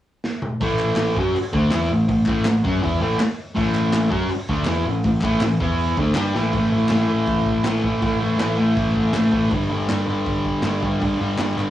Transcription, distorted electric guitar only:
0.61 A2 E3 A3
1.17 F#3 C#4 F#4
1.36 muted distorted electric guitar stroke
1.53 D3 A3 D4
1.72 E3 B3 E4
1.90 A2 E3
2.08 A2 E3
2.26 A2 E3 A3
2.46 A2 E3
2.64 F#3 C#4 F#4
2.82 E3 B3 E4
3.00 A2 E3 A3
3.19 muted distorted electric guitar stroke
3.55 A2 E3 A3
4.10 F#3 C#4 F#4
4.31 muted distorted electric guitar stroke
4.49 D3 A3 D4
4.67 E3 B3 E4
4.86 A2 E3
5.05 A2 E3
5.23 A2 E3 A3
5.43 A2 E3
5.60 E3 B3 E4
5.98 D3 A3 D4
6.15 G3 D4 G4
6.35 A2 E3 A3
6.53 A2 E3 A3
6.71 A3
6.75 E3
6.90 A2 E3 A3
7.08 E3 A3
7.65 A2 E3 A3
7.83 E3 A3
8.02 A2 E3 A3
8.20 E3 A3
8.38 A2 E3 A3
8.57 A3
8.61 E3
9.13 A2 E3 A3
9.32 E3 A3
9.50 G2 D3
9.54 G3
9.69 D3 G3
9.88 G2 D3 G3
10.06 G3
10.10 D3
10.63 G2 D3 G3
10.82 D3 G3
11.01 G2 D3 G3
11.18 D3 G3
11.38 G2 D3 G3
11.56 D3 G3

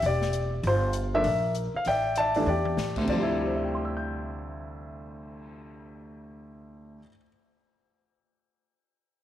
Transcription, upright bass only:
0.03 E1
0.63 G1
1.25 A#1
1.74 muted upright bass stroke
1.86 A1
2.46 E2
2.77 A2
3.07 D2

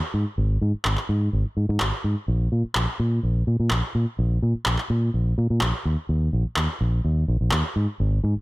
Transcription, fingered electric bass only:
0.14 G#2
0.38 G#1
0.61 G#2
0.74 muted fingered electric bass stroke
0.85 G#1
1.09 G#2
1.33 G#1
1.57 G#2
1.69 G#2
1.80 G#1
2.04 G#2
2.28 A#1
2.52 A#2
2.64 muted fingered electric bass stroke
2.75 A#1
2.99 A#2
3.23 A#1
3.47 A#2
3.60 A#2
3.71 A#1
3.95 A#2
4.19 A#1
4.42 A#2
4.55 muted fingered electric bass stroke
4.66 A#1
4.90 A#2
5.14 A#1
5.38 A#2
5.50 A#2
5.61 A#1
5.85 D#2
6.09 D#2
6.33 A#1
6.57 D#2
6.81 A#1
7.04 D#2
7.28 A#1
7.41 A#1
7.52 D#2
7.76 G#2
8.00 G#1
8.24 G#2
8.36 muted fingered electric bass stroke

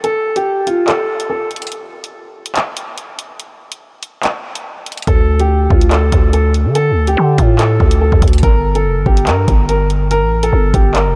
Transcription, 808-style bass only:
5.07 D2
5.70 D2
6.12 D2
6.65 D3
6.91 D2
7.17 D3
7.38 A2
7.80 D2
8.12 D2
8.22 D2
8.43 G1
8.85 F1
8.96 G1
9.06 G1
9.27 G2
9.48 G1
10.22 A1
10.53 G1
10.74 G1
11.06 F1

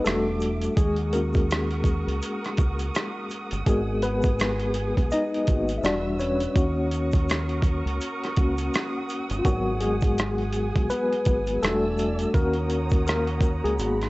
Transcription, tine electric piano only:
0.04 G3 A3 D4 F#4 A4
0.77 G#3 G#4
1.13 A#3 C#4 F#4 A#4
3.66 G#3 B3 F#4 G#4 A#4
4.03 B3 B4
5.12 D#4 D#5
5.49 A#3 B3 F#4
5.78 E5
5.84 G3 D4 F#4 D5
6.20 C#4 C#5
6.56 A#3 C#4 F#4
8.37 A#3 C#4 F#4
9.39 F4
9.45 F#3 B3 F#4 A#4
9.81 G#3 G#4
10.90 B3 B4
11.62 G3 A3 D4 F#4 A4
12.34 A#3 C#4 F#4 A#4
13.07 A#3 A#4
13.64 G#3 G#4
13.79 A#3 B3 F#4

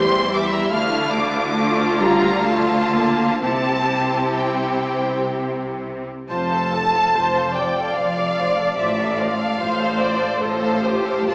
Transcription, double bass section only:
Already playing: E2
0.72 D2
3.43 C2
6.31 F1
7.16 F1
7.97 F1
8.78 A1
9.60 A1
10.42 A1
11.29 A#1

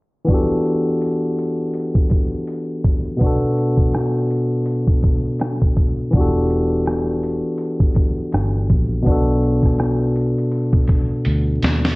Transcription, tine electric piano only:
0.25 E3 B3 D4
0.31 F#4 G4 A4
3.17 B2 B3
3.21 D4 F#4
3.26 A4
6.11 E3 B3
6.15 D4 F#4 G4
6.21 A4
9.02 B2 B3
9.07 D4 F#4
9.12 A4

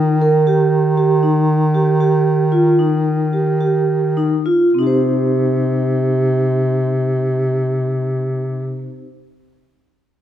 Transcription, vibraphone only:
Already playing: D#4
0.22 A#4
0.47 G4
0.97 G4
1.23 D#4
1.75 G4
2.00 G4
2.52 F4
2.79 D#4
3.33 G4
3.61 G4
4.17 D#4
4.46 F4
4.74 C4
4.79 D#4
4.83 G4
4.87 C5

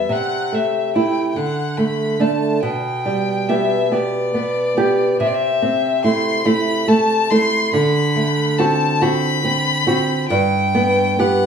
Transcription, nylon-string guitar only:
0.09 C3
0.52 A3
0.95 A3 E4
1.36 D3
1.78 A3
2.20 A3 D4
2.63 B2
3.06 G3
3.49 B3 G4
3.91 B3 G4
4.34 B3
4.77 B3 G4
5.20 C3
5.62 C4
6.04 A3 E4
6.45 A3 E4
6.88 A3
7.31 A3 E4
7.73 D3
8.16 A3
8.59 C4 F#4
9.01 C4 F#4
9.44 C4
9.87 C4 F#4
10.30 G2
10.75 B3
11.19 B3 G4

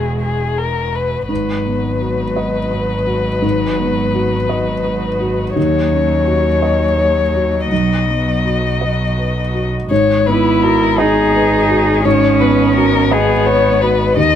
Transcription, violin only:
Already playing: G#4
0.21 G#4
0.58 A#4
0.95 B4
1.29 B4
5.55 C#5
7.72 D#5
9.91 C#5
10.26 B4
10.64 A#4
10.98 G#4
12.05 C#5
12.40 B4
12.76 A#4
13.12 G#4
13.46 C#5
13.82 B4
14.17 D#5

